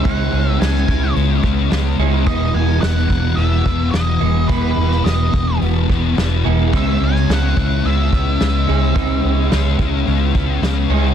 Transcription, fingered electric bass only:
\new Staff \with { instrumentName = "Fingered electric bass" } { \clef bass \time 4/4 \key cis \minor \tempo 4 = 108 cis,8 cis,8 cis,8 r8 cis,8 r8 cis,8 cis,8 | r8 e,,8 e,,8 r8 e,,8 e,,8 e,,8 e,,8 | e,,8 e,,8 e,,8 e,,8 e,,8 e,,8 e,,8 e,,8 | cis,8 cis,8 cis,8 cis,8 cis,8 cis,8 cis,8 cis,8 |
r8 cis,8 cis,8 cis,8 cis,8 r8 cis,8 cis,8 | }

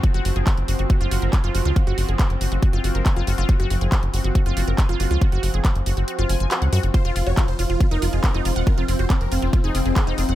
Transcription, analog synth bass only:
\new Staff \with { instrumentName = "Analog synth bass" } { \clef bass \time 4/4 \key ges \lydian \tempo 4 = 139 r16 ges,,16 ges,,16 ges,,16 r16 ges,,16 ges,,16 ges,,16 r16 ges,,16 ges,,16 ges,,16 r16 ges,,16 ges,,16 des,16 | r16 ges,,16 ges,,16 ges,,16 r16 ges,,16 ges,,16 ges,,16 r16 ges,,16 ges,,16 ges,,16 r16 ges,,16 ges,,16 ges,,16 | r16 ges,,16 ges,,16 ges,,16 r16 ges,,16 ges,,16 ges,,16 r16 ges,,16 ges,,16 ges,,16 r16 ges,,16 ges,,16 des,16 | r16 ges,,16 ges,,16 ges,,16 r16 ges,,16 ges,,16 ges,,16 r16 ges,,16 ges,,16 ges,,16 r16 des,16 ges,16 ges,,16 |
r16 f,,16 f,,16 f,,16 r16 f,,16 f,,16 f,,16 r16 f,,16 f,,16 f,,16 r16 f,,16 f,,16 ees,,16 | r16 f,,16 f,,16 f,,16 r16 f,,16 f,,16 f,,16 r16 f,,16 f,,16 f,,16 r16 f,,16 f,,16 f,,16 | }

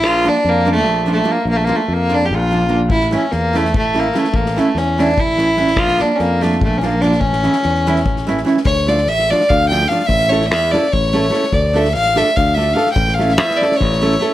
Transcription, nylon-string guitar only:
\new Staff \with { instrumentName = "Nylon-string guitar" } { \time 7/8 \tempo 4 = 146 r8 <f bes d' f'>8 r8 <f bes d' f'>8 r8 <f bes d' f'>8 <f bes d' f'>8 | r8 <f bes d' f'>8 r8 <f bes d' f'>8 r8 <f bes d' f'>8 <f bes d' f'>8 | r8 <e a cis' e'>8 r8 <e a cis' e'>8 r8 <e a cis' e'>8 <e a cis' e'>8 | r8 <e a cis' e'>8 r8 <e a cis' e'>8 r8 <e a cis' e'>8 <e a cis' e'>8 |
r8 <f bes d' f'>8 r8 <f bes d' f'>8 r8 <f bes d' f'>8 <f bes d' f'>8 | r8 <e a cis' e'>8 r8 <e a cis' e'>8 r8 <e a cis' e'>8 <e a cis' e'>8 | r8 <f a d' f'>8 r8 <f a d' f'>8 r8 <f a d' f'>8 <f a d' f'>8 | r8 <a cis' e' a'>8 r8 <a cis' e' a'>8 r8 <a cis' e' a'>8 <a cis' e' a'>8 |
r8 <a d' f' a'>8 r8 <a d' f' a'>8 r8 <a d' f' a'>8 <a d' f' a'>8 | r8 <a cis' e' a'>8 r8 <a cis' e' a'>8 r8 <a cis' e' a'>8 <a cis' e' a'>8 | }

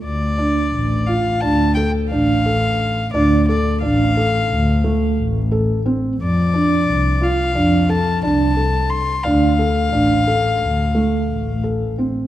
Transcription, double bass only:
\new Staff \with { instrumentName = "Double bass" } { \clef bass \time 9/8 \key d \minor \tempo 4. = 59 d,4 a,,4 d,4 a,,4. | d,4 a,,4 d,4 a,,4. | f,4 c,4 f,4 c,4. | d,4 a,,4 d,4 a,,4. | }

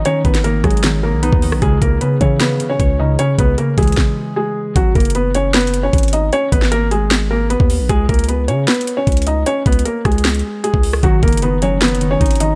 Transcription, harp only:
\new Staff \with { instrumentName = "Harp" } { \clef bass \time 4/4 \key gis \minor \tempo 4 = 153 <dis dis'>4 dis8 fis8 dis8 dis8 dis'8 dis8 | cis4 cis8 e8 cis8 cis8 cis''8 cis8 | cis4 cis8 e2~ e8 | r1 |
r1 | r1 | r1 | dis4 dis8 fis8 dis8 dis8 dis'8 dis8 | }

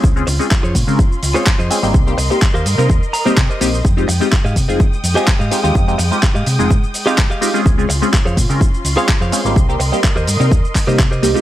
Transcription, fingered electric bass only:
\new Staff \with { instrumentName = "Fingered electric bass" } { \clef bass \time 4/4 \key f \minor \tempo 4 = 126 des,8 des,16 r8 f,16 bes,16 des16 r8 des,16 r8 f,16 r16 aes,,16 | c,8 c,16 r8 ees,16 g,16 c16 ees,16 r8. c16 r16 bes,,8 | f,8 f,16 r8 aes,16 c16 f,,16 r8 f,16 r8 aes,16 r16 ees,16 | r8 f,16 r8 aes,16 c16 f,,16 aes,16 r4. r16 |
des,8 des,16 r8 f,16 bes,16 des16 r8 des,16 r8 f,16 r16 aes,,16 | c,8 c,16 r8 ees,16 g,16 c16 ees,16 r8 c8. c,16 r16 | }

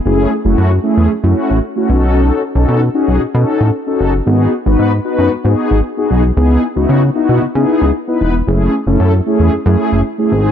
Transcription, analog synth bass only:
\new Staff \with { instrumentName = "Analog synth bass" } { \clef bass \time 4/4 \key fis \dorian \tempo 4 = 114 fis,,8 r16 fis,,16 fis,8 r16 e,16 fis,16 fis,16 r16 a,,16 r8 b,,8~ | b,,8 r16 b,,16 b,8 r16 b,,16 b,16 b,16 r16 a,16 r8 fis,,8 | gis,,8 r16 gis,,16 gis,8 r16 fis,16 gis,16 gis,16 r16 gis,,16 r8 b,,8 | cis,8 r16 cis,16 cis8 r16 b,16 cis16 cis16 r16 cis,16 r8 e,,8 |
fis,,8 r16 fis,,16 fis,8 r16 e,16 fis,16 fis,16 r16 fis,,16 r8 gis,,8 | }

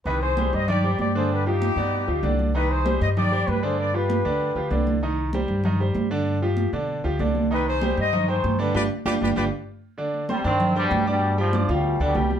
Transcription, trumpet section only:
\new Staff \with { instrumentName = "Trumpet section" } { \time 4/4 \key c \minor \tempo 4 = 193 <g' b'>8 <aes' c''>4 <c'' ees''>8 <g' d''>4 <g' d''>8 <aes' c''>8 | <g' b'>8 <ees' g'>2. r8 | <g' b'>8 <aes' c''>4 <c'' ees''>8 <g' d''>4 <g' b'>8 <aes' c''>8 | <b' d''>8 <g' b'>2. r8 |
r1 | r1 | <g' b'>8 <aes' c''>4 <c'' ees''>4 <aes' c''>4 <g' b'>8 | <g' b' d''>8 r8 <g' b' d''>8 <g' b' d''>8 <g' b' d''>8 r4. |
r1 | r1 | }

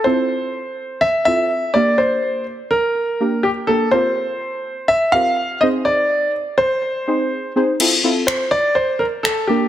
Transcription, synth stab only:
\new Staff \with { instrumentName = "Synth stab" } { \time 4/4 \key f \major \tempo 4 = 124 <c' e' f' a'>4 r4. <c' e' f' a'>8 r8 <bes d' g' bes'>8~ | <bes d' g' bes'>4 r4. <bes d' g' bes'>8 r8 <bes d' g' bes'>8 | <c' f' g' bes'>4 r4. <c' f' g' bes'>8 r8 <c' ees' aes' c''>8~ | <c' ees' aes' c''>4 r4. <c' ees' aes' c''>8 r8 <c' ees' aes' c''>8 |
<c' e' f' a'>8 <c' e' f' a'>4 r2 <bes d' g' bes'>8 | }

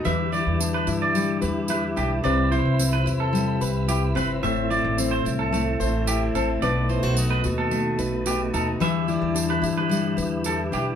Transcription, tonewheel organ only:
<<
  \new Staff \with { instrumentName = "Tonewheel organ" } { \time 4/4 \key e \phrygian \tempo 4 = 110 e'1 | e'1 | e'1 | dis'1 |
e'1 | }
  \new Staff \with { instrumentName = "Tonewheel organ" } { \clef bass \time 4/4 \key e \phrygian << { g1 | b'1 | a1~ | a1 |
g1 | } \\ { d1 | c1~ | c1 | b,1 |
d1 | } >> }
>>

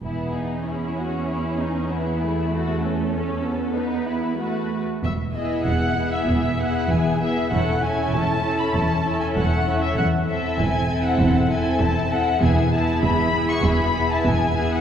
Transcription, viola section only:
\new Staff \with { instrumentName = "Viola section" } { \time 4/4 \key e \major \tempo 4 = 98 b4 cis'2 b8 a8~ | a4 cis'8 b4. a8 r8 | r8 <b e'>4 <b e'>4 <b e'>4 <b e'>8 | <cis' e'>8 <cis' e'>4 <cis' e'>4 <cis' e'>4 <cis' e'>8 |
r8 <c' e'>4 <c' e'>4 <c' e'>4 <c' e'>8 | <b e'>8 <b e'>4 <b e'>4 <b e'>4 <b e'>8 | }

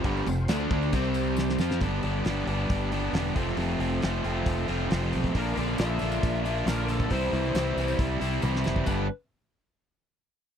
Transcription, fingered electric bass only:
\new Staff \with { instrumentName = "Fingered electric bass" } { \clef bass \time 4/4 \key f \lydian \tempo 4 = 136 g,,8 f,,8 d,8 d,8 c,4. f,8 | g,,8 g,,8 g,,8 g,,8 g,,4 e,,8 f,,8 | f,,8 f,,8 f,,8 f,,8 f,,8 f,,8 f,,8 b,,8 | bes,,8 bes,,8 bes,,8 bes,,8 bes,,4 bes,,4 |
c,8 c,8 c,8 c,8 c,8 c,8 c,8 fis,,8 | g,,8 r2. r8 | }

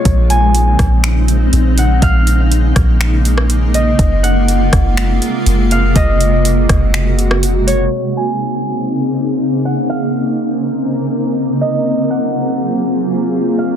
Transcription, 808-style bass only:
\new Staff \with { instrumentName = "808-style bass" } { \clef bass \time 4/4 \key bes \minor \tempo 4 = 122 bes,,4. bes,,4. bes,,4 | bes,,4. bes,,2~ bes,,8 | ges,,4. ges,,4 r8 ges,,4 | ges,,4. ges,,2~ ges,,8 |
r1 | r1 | r1 | }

